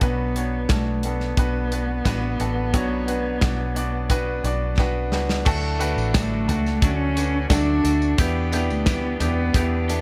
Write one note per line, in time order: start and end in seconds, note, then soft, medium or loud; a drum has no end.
0.01 0.66 B1 medium
0.01 1.00 B2 medium
0.01 1.00 F#3 medium
0.01 0.31 B3 medium
0.01 0.72 B3 medium
0.01 0.31 D4 medium
0.01 0.31 F#4 medium
0.01 0.31 B4 medium
0.01 kick medium
0.01 closed hi-hat medium
0.36 0.65 B3 medium
0.36 0.65 D4 medium
0.36 0.65 F#4 medium
0.36 0.66 C#5 medium
0.36 closed hi-hat medium
0.69 1.34 B1 medium
0.69 1.06 A3 medium
0.69 0.99 B3 medium
0.69 0.99 D4 medium
0.69 0.99 F#4 medium
0.69 1.00 A4 medium
0.69 kick loud
0.69 snare loud
0.69 closed hi-hat medium
1.03 1.33 B3 medium
1.03 4.79 B3 medium
1.03 1.33 D4 medium
1.03 1.33 F#4 medium
1.03 1.34 A4 medium
1.03 closed hi-hat medium
1.20 snare soft
1.37 2.02 B1 medium
1.37 1.67 B3 medium
1.37 1.67 D4 medium
1.37 1.67 F#4 medium
1.37 1.68 B4 loud
1.37 kick medium
1.37 closed hi-hat medium
1.71 2.01 B3 medium
1.71 2.01 D4 medium
1.71 2.01 F#4 medium
1.71 2.02 B4 medium
1.71 closed hi-hat medium
2.05 2.37 A1 medium
2.05 2.34 B3 medium
2.05 2.35 D4 medium
2.05 2.35 F#4 medium
2.05 2.35 B4 loud
2.05 kick medium
2.05 snare medium
2.05 closed hi-hat medium
2.39 2.74 A1 medium
2.39 2.69 B3 medium
2.39 2.69 D4 medium
2.39 2.69 F#4 medium
2.39 2.70 A4 medium
2.39 closed hi-hat medium
2.73 3.38 B1 medium
2.73 3.72 B2 medium
2.73 3.72 F#3 medium
2.73 3.03 B3 medium
2.73 3.03 D4 medium
2.73 3.03 F#4 medium
2.73 3.04 C#5 loud
2.73 kick loud
2.73 closed hi-hat medium
3.07 3.37 B3 medium
3.07 3.37 D4 medium
3.07 3.37 F#4 medium
3.07 3.38 B4 medium
3.07 closed hi-hat medium
3.41 4.40 B1 medium
3.41 3.71 B3 medium
3.41 3.71 D4 medium
3.41 3.71 F#4 medium
3.41 3.72 D5 medium
3.41 kick loud
3.41 snare loud
3.41 closed hi-hat medium
3.75 4.05 B3 medium
3.75 4.05 D4 medium
3.75 4.05 F#4 medium
3.75 4.06 D5 medium
3.75 closed hi-hat medium
4.09 4.39 B3 loud
4.09 4.39 D4 medium
4.09 4.39 F#4 medium
4.09 4.40 B4 loud
4.09 kick medium
4.09 closed hi-hat medium
4.43 5.11 B1 medium
4.43 4.73 B3 medium
4.43 4.73 D4 medium
4.43 4.74 F#4 medium
4.43 4.74 D5 medium
4.43 closed hi-hat medium
4.78 5.07 B3 medium
4.78 5.08 D4 medium
4.78 5.08 F#4 medium
4.78 5.08 B4 loud
4.78 kick medium
4.78 snare soft
5.11 5.43 C#2 medium
5.11 5.41 B3 medium
5.11 5.41 D4 medium
5.11 5.42 F#4 medium
5.11 5.42 B4 medium
5.11 snare medium
5.29 snare medium
5.45 5.94 D2 medium
5.45 6.44 A2 medium
5.45 5.80 D3 medium
5.45 5.80 F#3 medium
5.45 5.75 A3 loud
5.45 5.81 A3 loud
5.45 5.75 D4 medium
5.45 5.80 D4 medium
5.45 5.75 F#4 loud
5.45 5.78 F#4 medium
5.45 5.76 A4 loud
5.45 kick loud
5.45 crash medium
5.45 tambourine medium
5.79 6.09 A3 loud
5.79 6.14 A3 medium
5.79 6.09 D4 loud
5.79 6.14 D4 medium
5.79 6.14 F#4 medium
5.79 6.09 F#4 loud
5.79 6.10 B4 loud
5.79 closed hi-hat medium
5.79 tambourine medium
5.96 6.48 A1 medium
5.96 tambourine soft
6.14 6.48 D3 medium
6.14 6.48 F#3 medium
6.14 6.43 A3 medium
6.14 6.48 A3 medium
6.14 6.85 A3 medium
6.14 6.43 D4 medium
6.14 6.48 D4 medium
6.14 6.44 F#4 medium
6.14 6.47 F#4 medium
6.14 6.44 A4 medium
6.14 kick loud
6.14 snare loud
6.14 closed hi-hat medium
6.14 tambourine medium
6.48 6.80 C#2 medium
6.48 6.77 A3 medium
6.48 6.82 A3 soft
6.48 6.78 D4 medium
6.48 6.83 D4 medium
6.48 6.82 F#4 medium
6.48 6.78 F#4 medium
6.48 6.78 A4 medium
6.48 closed hi-hat medium
6.48 floor tom medium
6.48 tambourine medium
6.66 snare soft
6.66 tambourine soft
6.82 7.46 D2 medium
6.82 7.16 F#3 medium
6.82 7.11 A3 medium
6.82 7.17 A3 medium
6.82 7.51 C#4 loud
6.82 7.12 D4 medium
6.82 7.16 D4 medium
6.82 7.12 F#4 medium
6.82 7.14 F#4 medium
6.82 7.12 A4 medium
6.82 kick loud
6.82 closed hi-hat medium
6.82 tambourine soft
7.15 7.45 A3 medium
7.15 7.50 A3 medium
7.15 7.46 D4 medium
7.15 7.51 D4 medium
7.15 7.50 F#4 medium
7.15 7.46 F#4 medium
7.15 7.46 B4 medium
7.15 closed hi-hat medium
7.15 tambourine soft
7.49 7.82 D2 medium
7.49 7.84 D3 medium
7.49 7.85 F#3 medium
7.49 7.79 A3 medium
7.49 7.85 A3 medium
7.49 7.79 D4 medium
7.49 8.21 D4 loud
7.49 7.84 D4 medium
7.49 7.80 F#4 medium
7.49 7.83 F#4 medium
7.49 7.80 A4 loud
7.49 kick loud
7.49 snare loud
7.49 closed hi-hat medium
7.49 tambourine medium
7.84 8.16 D2 medium
7.84 8.13 A3 medium
7.84 8.18 A3 medium
7.84 8.13 D4 medium
7.84 8.18 D4 medium
7.84 8.18 F#4 medium
7.84 8.13 F#4 medium
7.84 8.14 A4 medium
7.84 closed hi-hat medium
7.84 tambourine soft
8.02 tambourine soft
8.17 8.70 E2 loud
8.17 9.16 B2 medium
8.17 8.52 E3 medium
8.17 8.47 B3 medium
8.17 8.53 B3 medium
8.17 8.72 B3 medium
8.17 8.47 D4 medium
8.17 8.52 D4 medium
8.17 8.48 E4 medium
8.17 8.48 G4 loud
8.17 8.51 G4 loud
8.17 kick loud
8.17 closed hi-hat loud
8.17 tambourine medium
8.52 8.81 B3 loud
8.52 8.86 B3 soft
8.52 8.81 D4 medium
8.52 8.86 D4 medium
8.52 8.82 E4 medium
8.52 8.86 G4 medium
8.52 8.82 G4 loud
8.52 closed hi-hat medium
8.52 tambourine medium
8.70 9.17 D2 medium
8.70 8.89 A3 medium
8.70 tambourine soft
8.86 9.20 E3 medium
8.86 9.15 B3 medium
8.86 9.21 B3 medium
8.86 9.16 D4 medium
8.86 9.20 D4 medium
8.86 9.16 E4 medium
8.86 9.16 G4 medium
8.86 9.18 G4 medium
8.86 kick loud
8.86 snare loud
8.86 closed hi-hat medium
8.86 tambourine medium
9.20 9.52 E2 medium
9.20 9.49 B3 medium
9.20 9.54 B3 soft
9.20 9.86 B3 medium
9.20 9.49 D4 medium
9.20 9.55 D4 soft
9.20 9.50 E4 medium
9.20 9.54 G4 medium
9.20 9.50 G4 medium
9.20 closed hi-hat medium
9.20 floor tom medium
9.20 tambourine soft
9.54 10.01 E2 medium
9.54 9.88 E3 medium
9.54 9.83 B3 medium
9.54 9.89 B3 medium
9.54 9.84 D4 medium
9.54 9.89 D4 medium
9.54 9.84 E4 medium
9.54 9.84 G4 medium
9.54 9.87 G4 medium
9.54 kick loud
9.54 closed hi-hat medium
9.54 tambourine soft
9.88 10.01 B3 medium
9.88 10.01 D4 medium
9.88 10.01 E4 medium
9.88 10.01 G4 medium
9.88 10.01 A4 medium
9.88 closed hi-hat medium
9.88 tambourine medium